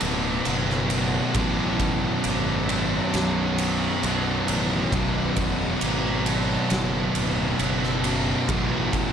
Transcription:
0.00 0.38 D1 medium
0.00 0.45 B1 medium
0.00 0.92 B1 medium
0.00 0.44 F#2 medium
0.00 0.88 F#2 loud
0.00 0.47 B2 medium
0.00 0.90 B2 loud
0.00 0.48 F#3 medium
0.00 0.49 D4 medium
0.00 ride medium
0.45 1.19 F#1 medium
0.45 1.34 B1 medium
0.45 1.33 F#2 medium
0.45 1.37 B2 medium
0.45 1.37 F#3 medium
0.45 1.38 D4 medium
0.45 ride loud
0.70 snare soft
0.90 1.34 B1 medium
0.90 1.33 F#2 medium
0.90 1.37 B2 medium
0.90 ride medium
1.34 2.08 A1 medium
1.34 2.72 B1 medium
1.34 4.50 B1 loud
1.34 2.67 F#2 loud
1.34 4.46 F#2 loud
1.34 2.71 B2 loud
1.34 4.47 B2 loud
1.34 2.70 F#3 loud
1.34 kick loud
1.34 ride loud
1.39 2.69 D4 loud
1.80 kick medium
1.80 ride medium
2.24 2.98 G#1 medium
2.24 ride loud
2.69 4.03 B1 medium
2.69 4.02 F#2 medium
2.69 4.05 B2 medium
2.69 4.06 F#3 medium
2.69 4.06 D4 medium
2.69 ride medium
3.14 3.87 B1 medium
3.14 snare loud
3.14 ride loud
3.58 ride medium
4.03 4.91 B1 medium
4.03 4.40 B1 medium
4.03 4.90 F#2 medium
4.03 4.93 B2 medium
4.03 4.94 F#3 medium
4.03 4.95 D4 medium
4.03 ride medium
4.47 4.85 A1 medium
4.47 4.91 B1 medium
4.47 4.91 F#2 medium
4.47 4.94 B2 medium
4.47 ride medium
4.91 5.29 B0 loud
4.91 8.07 B1 loud
4.91 6.28 B1 loud
4.91 6.24 F#2 loud
4.91 8.03 F#2 loud
4.91 6.27 B2 loud
4.91 8.04 B2 loud
4.91 6.26 F#3 loud
4.91 6.25 D4 loud
4.91 kick loud
4.91 ride loud
5.36 5.74 E1 loud
5.36 kick medium
5.36 ride medium
5.81 6.55 G#1 medium
5.81 ride loud
6.25 7.59 B1 medium
6.25 7.59 F#2 medium
6.25 7.61 B2 medium
6.25 7.61 F#3 medium
6.25 7.62 D4 medium
6.25 ride medium
6.70 7.08 F#1 medium
6.70 snare loud
6.70 ride loud
7.15 7.52 D1 medium
7.15 ride medium
7.59 8.33 F#1 loud
7.59 8.48 B1 medium
7.59 8.47 F#2 medium
7.59 8.50 B2 medium
7.59 8.51 F#3 medium
7.59 8.52 D4 medium
7.59 ride loud
7.84 snare soft
8.04 8.48 B1 medium
8.04 8.47 F#2 medium
8.04 8.51 B2 loud
8.04 ride medium
8.48 9.13 A1 loud
8.48 9.13 B1 loud
8.48 9.13 F#2 loud
8.48 9.13 B2 loud
8.48 9.13 F#3 loud
8.48 9.13 D4 loud
8.48 kick loud
8.48 ride loud
8.93 kick medium
8.93 ride medium

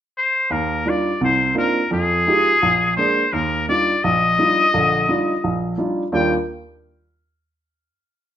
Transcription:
0.18 0.54 C5 medium
0.50 0.81 D#2 medium
0.50 0.91 A#4 medium
0.86 1.10 G3 medium
0.86 1.10 D4 soft
0.86 1.10 D#4 soft
0.86 1.10 F4 medium
0.86 1.23 D5 medium
1.21 1.51 C2 medium
1.21 1.51 C3 medium
1.21 1.56 C5 medium
1.54 1.79 A#3 soft
1.54 1.79 C4 soft
1.54 1.79 D4 soft
1.54 1.80 D#4 soft
1.54 1.80 F4 medium
1.54 1.90 A#4 medium
1.91 2.22 F2 medium
1.91 2.94 G#4 medium
2.27 2.51 G#3 soft
2.27 2.51 D#4 soft
2.27 2.51 F4 soft
2.27 2.51 G4 medium
2.62 2.93 A#1 medium
2.97 3.21 G#3 soft
2.97 3.21 A#3 soft
2.97 3.21 D4 medium
2.97 3.34 C5 medium
3.33 3.63 D#2 medium
3.33 3.68 A#4 medium
3.69 3.92 G3 soft
3.69 3.92 D4 soft
3.69 3.92 D#4 soft
3.69 3.92 F4 medium
3.69 4.05 D5 loud
4.04 4.34 A#1 medium
4.04 5.79 D#5 loud
4.39 4.62 G3 medium
4.39 4.62 D4 soft
4.39 4.62 D#4 soft
4.39 4.62 F4 medium
4.74 5.04 A#1 medium
4.74 5.04 D3 medium
5.09 5.32 G3 soft
5.09 5.32 D4 soft
5.09 5.32 D#4 soft
5.09 5.32 F4 medium
5.44 5.74 A#1 medium
5.78 6.02 G3 soft
5.78 6.02 D4 soft
5.78 6.02 D#4 soft
5.78 6.02 F4 medium
6.12 6.33 D#2 medium
6.12 6.33 D#3 medium
6.12 6.33 G3 medium
6.12 6.34 D4 medium
6.12 6.33 F4 medium
6.12 6.35 G5 medium

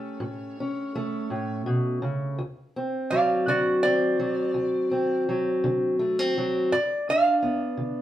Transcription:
0.00 0.93 A3 medium
0.00 0.58 C#4 medium
0.00 2.36 G4 medium
0.00 1.61 C#5 medium
0.20 0.86 A2 medium
0.60 2.35 C#4 medium
0.95 2.35 A3 medium
1.30 1.66 A2 medium
1.66 2.02 B2 medium
2.02 2.38 C#3 medium
2.38 3.03 D2 medium
2.76 3.83 C4 medium
3.10 4.18 F#3 medium
3.10 3.47 D5 medium
3.10 3.45 F5 medium
3.47 4.12 D3 medium
3.47 3.81 F#4 medium
3.47 3.82 D5 medium
3.83 4.90 C4 medium
3.83 5.23 D5 medium
4.20 5.27 F#3 medium
4.54 5.19 D2 medium
4.91 5.99 C4 medium
5.29 6.36 F#3 medium
5.64 6.28 D3 medium
5.99 6.19 A3 medium
6.19 6.72 C4 medium
6.38 6.72 F#3 medium
6.72 7.36 G2 medium
6.72 7.07 D5 medium
7.09 8.02 D4 medium
7.09 8.02 F5 loud
7.42 8.02 B3 medium
7.77 8.02 D3 medium

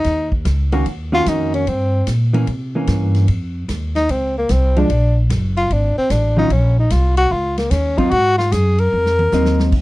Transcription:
0.00 0.30 D#4 medium
0.04 0.44 D#2 medium
0.04 kick soft
0.04 snare soft
0.04 ride medium
0.32 kick medium
0.45 0.85 C#2 loud
0.45 kick soft
0.45 snare medium
0.45 hi-hat pedal medium
0.45 ride medium
0.72 0.85 D#3 medium
0.72 0.85 A#3 medium
0.72 0.85 C#4 medium
0.72 0.85 F#4 loud
0.72 ride soft
0.86 1.25 D#2 medium
0.86 kick soft
0.86 ride medium
1.12 1.64 D#3 medium
1.12 1.64 A#3 medium
1.12 1.64 C#4 medium
1.12 1.30 F4 loud
1.12 1.64 F#4 medium
1.26 1.66 F2 medium
1.26 1.54 D#4 medium
1.26 kick soft
1.26 snare medium
1.26 hi-hat pedal medium
1.26 ride medium
1.54 1.70 C#4 medium
1.54 ride soft
1.67 2.06 G2 medium
1.67 2.08 C4 medium
1.67 kick soft
1.67 ride medium
2.07 2.46 A#2 medium
2.07 kick soft
2.07 snare medium
2.07 hi-hat pedal medium
2.07 ride medium
2.33 2.46 E3 medium
2.33 2.46 A#3 medium
2.33 2.47 C#4 medium
2.33 ride medium
2.47 2.87 C3 medium
2.47 kick soft
2.47 ride medium
2.75 3.26 E3 medium
2.75 3.26 A#3 medium
2.75 3.27 C#4 medium
2.87 3.27 G2 loud
2.87 kick soft
2.87 snare medium
2.87 hi-hat pedal medium
2.87 ride medium
3.14 snare soft
3.14 ride soft
3.28 3.67 F2 medium
3.28 kick soft
3.28 ride medium
3.68 4.08 D#2 medium
3.68 kick soft
3.68 snare medium
3.68 hi-hat pedal soft
3.68 ride medium
3.96 4.12 D#4 medium
3.96 snare soft
3.96 ride soft
4.09 4.48 C#2 medium
4.09 4.37 C4 medium
4.09 kick soft
4.09 ride medium
4.38 4.53 A#3 medium
4.49 4.89 C2 medium
4.49 4.80 C4 medium
4.49 kick soft
4.49 snare medium
4.49 hi-hat pedal medium
4.49 ride medium
4.76 4.88 F3 medium
4.76 4.89 G#3 medium
4.76 4.89 D4 medium
4.76 5.18 D4 medium
4.76 ride soft
4.90 5.29 A#1 medium
4.90 kick soft
4.90 ride medium
5.30 5.69 F#1 loud
5.30 kick soft
5.30 snare medium
5.30 hi-hat pedal soft
5.30 ride medium
5.57 5.74 F4 medium
5.57 ride soft
5.70 5.95 G#1 medium
5.70 5.97 D4 medium
5.70 kick soft
5.70 ride medium
5.98 6.13 C4 loud
6.10 6.49 A1 medium
6.10 6.38 D4 medium
6.10 kick soft
6.10 snare medium
6.10 hi-hat pedal medium
6.10 ride medium
6.37 6.49 D#3 medium
6.37 6.50 F#3 medium
6.37 6.50 C#4 medium
6.37 6.54 D#4 medium
6.37 6.50 F4 medium
6.50 6.89 A#1 medium
6.50 6.78 C#4 medium
6.50 kick soft
6.50 ride medium
6.79 6.93 D#4 medium
6.90 7.30 C2 medium
6.90 7.17 F4 medium
6.90 kick soft
6.90 snare medium
6.90 hi-hat pedal medium
6.90 ride medium
7.17 7.34 F#4 loud
7.17 ride medium
7.31 7.70 C#2 medium
7.31 7.58 F4 medium
7.31 kick soft
7.57 7.72 A#3 medium
7.57 snare medium
7.57 ride medium
7.71 8.10 D#2 medium
7.71 7.99 C#4 medium
7.71 kick soft
7.71 snare medium
7.71 hi-hat pedal soft
7.71 ride medium
7.98 8.10 F#3 medium
7.98 8.10 C4 medium
7.98 8.11 D#4 medium
7.98 8.12 F4 medium
7.98 kick soft
7.98 ride soft
8.11 8.51 G#2 medium
8.11 8.38 F#4 loud
8.11 kick soft
8.11 ride medium
8.38 8.54 F4 medium
8.38 snare medium
8.52 8.91 F#2 medium
8.52 8.81 G#4 medium
8.52 kick soft
8.52 snare medium
8.52 hi-hat pedal medium
8.52 ride medium
8.78 9.66 A#4 medium
8.78 ride medium
8.93 9.31 F2 medium
9.06 snare medium
9.19 high tom medium
9.32 9.71 D#2 loud
9.32 9.73 F#3 medium
9.32 9.73 C4 medium
9.32 9.73 D#4 medium
9.32 snare medium
9.32 hi-hat pedal medium
9.45 snare medium
9.59 snare medium
9.72 9.82 C#2 medium
9.72 kick medium
9.72 crash medium

